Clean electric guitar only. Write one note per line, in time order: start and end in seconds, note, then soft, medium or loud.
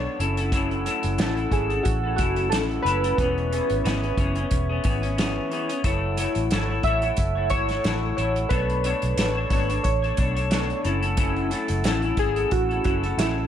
0.00 0.18 B3 medium
0.00 0.19 D4 medium
0.00 0.19 A4 medium
0.00 0.19 C#5 medium
0.18 0.37 F#3 medium
0.18 0.37 C#4 medium
0.18 0.37 E4 medium
0.18 0.36 A4 medium
0.37 0.52 C#4 soft
0.37 0.52 E4 medium
0.37 0.52 A4 medium
0.52 0.84 F#3 medium
0.52 0.85 C#4 medium
0.52 0.86 E4 medium
0.52 0.86 A4 medium
0.85 1.17 F#3 medium
0.85 1.17 C#4 medium
0.85 1.18 E4 medium
0.85 1.19 A4 medium
1.18 1.37 F#3 medium
1.18 1.37 C#4 medium
1.18 1.37 E4 medium
1.18 1.35 A4 loud
1.36 1.51 C#4 soft
1.36 1.52 E4 soft
1.36 1.52 A4 medium
1.51 1.70 F#3 medium
1.51 1.70 C#4 medium
1.51 1.70 E4 medium
1.51 1.68 A4 medium
1.70 2.05 C#4 soft
1.70 2.04 E4 soft
1.70 2.02 A4 medium
2.03 2.17 C#4 soft
2.03 2.18 E4 medium
2.03 2.18 A4 medium
2.17 2.36 F#3 medium
2.17 2.37 C#4 medium
2.17 2.36 E4 medium
2.17 2.35 A4 medium
2.36 2.50 C#4 soft
2.36 2.51 E4 soft
2.36 2.51 A4 soft
2.51 2.83 F#3 medium
2.51 2.85 C#4 medium
2.51 2.85 E4 medium
2.51 2.86 A4 medium
2.85 3.03 F#3 medium
2.85 3.04 C#4 medium
2.85 3.03 E4 medium
2.85 3.02 A4 medium
3.03 3.18 C#4 soft
3.03 3.19 E4 soft
3.03 3.18 A4 soft
3.18 3.49 E3 medium
3.18 3.51 B3 medium
3.18 3.52 C#4 medium
3.18 3.52 G#4 medium
3.51 3.83 E3 medium
3.51 3.84 B3 medium
3.51 3.84 C#4 medium
3.51 3.85 G#4 medium
3.84 4.03 E3 medium
3.84 4.03 B3 medium
3.84 4.03 C#4 medium
3.84 4.02 G#4 medium
4.03 4.18 B3 soft
4.03 4.18 C#4 medium
4.03 4.18 G#4 medium
4.18 4.36 E3 medium
4.18 4.37 B3 medium
4.18 4.37 C#4 medium
4.18 4.35 G#4 medium
4.36 4.71 B3 soft
4.36 4.69 C#4 medium
4.36 4.68 G#4 medium
4.69 4.83 B3 soft
4.69 4.84 C#4 soft
4.69 4.85 G#4 medium
4.84 5.03 E3 medium
4.84 5.03 B3 medium
4.84 5.03 C#4 medium
4.84 5.01 G#4 medium
5.02 5.17 B3 soft
5.02 5.18 C#4 medium
5.02 5.18 G#4 medium
5.18 5.49 E3 medium
5.18 5.50 B3 medium
5.18 5.51 C#4 loud
5.18 5.52 G#4 medium
5.50 5.69 E3 medium
5.50 5.70 B3 medium
5.50 5.69 C#4 medium
5.50 5.68 G#4 medium
5.69 5.86 B3 soft
5.69 5.84 C#4 medium
5.69 5.84 G#4 medium
5.84 6.16 F#3 medium
5.84 6.17 E4 medium
5.84 6.18 A4 medium
5.84 6.18 C#5 medium
6.17 6.50 F#3 medium
6.17 6.50 E4 medium
6.17 6.51 A4 medium
6.17 6.52 C#5 medium
6.51 6.69 F#3 medium
6.51 6.70 E4 medium
6.51 6.69 A4 medium
6.51 6.67 C#5 medium
6.68 6.84 E4 soft
6.68 6.85 A4 soft
6.68 6.84 C#5 medium
6.84 7.03 F#3 medium
6.84 7.03 E4 medium
6.84 7.04 A4 medium
6.84 7.02 C#5 medium
7.03 7.37 E4 soft
7.03 7.36 A4 medium
7.03 7.34 C#5 soft
7.35 7.51 E4 soft
7.35 7.51 A4 soft
7.35 7.51 C#5 medium
7.50 7.69 F#3 medium
7.50 7.70 E4 medium
7.50 7.69 A4 medium
7.50 7.68 C#5 medium
7.69 7.83 E4 soft
7.69 7.84 A4 soft
7.69 7.84 C#5 medium
7.84 8.16 F#3 medium
7.84 8.16 E4 medium
7.84 8.17 A4 medium
7.84 8.18 C#5 medium
8.17 8.51 F#3 medium
8.17 8.51 E4 medium
8.17 8.50 A4 medium
8.17 8.51 C#5 medium
8.50 8.82 B3 medium
8.50 8.83 D4 medium
8.50 8.85 A4 medium
8.50 8.85 C#5 medium
8.84 9.16 B3 medium
8.84 9.17 D4 medium
8.84 9.17 A4 medium
8.84 9.18 C#5 medium
9.17 9.36 B3 medium
9.17 9.36 D4 medium
9.17 9.36 A4 medium
9.17 9.34 C#5 medium
9.36 9.50 D4 soft
9.36 9.51 A4 medium
9.36 9.51 C#5 medium
9.50 9.69 B3 medium
9.50 9.70 D4 medium
9.50 9.69 A4 medium
9.50 9.68 C#5 medium
9.69 10.04 D4 soft
9.69 10.02 A4 soft
9.69 10.01 C#5 medium
10.02 10.18 D4 soft
10.02 10.18 A4 soft
10.02 10.18 C#5 medium
10.18 10.36 B3 medium
10.18 10.37 D4 medium
10.18 10.36 A4 medium
10.18 10.34 C#5 medium
10.35 10.50 D4 soft
10.35 10.50 A4 soft
10.35 10.51 C#5 medium
10.50 10.84 B3 medium
10.50 10.84 D4 medium
10.50 10.85 A4 medium
10.50 10.85 C#5 medium
10.83 11.02 F#3 medium
10.83 11.03 C#4 medium
10.83 11.02 E4 medium
10.83 11.00 A4 medium
11.02 11.17 C#4 soft
11.02 11.18 E4 soft
11.02 11.17 A4 medium
11.18 11.49 F#3 medium
11.18 11.50 C#4 loud
11.18 11.51 E4 loud
11.18 11.52 A4 medium
11.50 11.83 F#3 medium
11.50 11.84 C#4 medium
11.50 11.84 E4 medium
11.50 11.85 A4 medium
11.84 12.03 F#3 medium
11.84 12.03 C#4 medium
11.84 12.03 E4 medium
11.84 12.01 A4 medium
12.02 12.18 C#4 soft
12.02 12.18 E4 medium
12.02 12.17 A4 medium
12.18 12.36 F#3 medium
12.18 12.37 C#4 medium
12.18 12.36 E4 medium
12.18 12.35 A4 medium
12.36 12.71 C#4 soft
12.36 12.70 E4 soft
12.36 12.68 A4 medium
12.69 12.84 C#4 soft
12.69 12.85 E4 soft
12.69 12.84 A4 medium
12.84 13.03 F#3 medium
12.84 13.03 C#4 medium
12.84 13.03 E4 medium
12.84 13.02 A4 medium
13.03 13.18 C#4 soft
13.03 13.18 E4 medium
13.03 13.18 A4 medium
13.18 13.47 F#3 medium
13.18 13.47 C#4 medium
13.18 13.47 E4 medium
13.18 13.47 A4 medium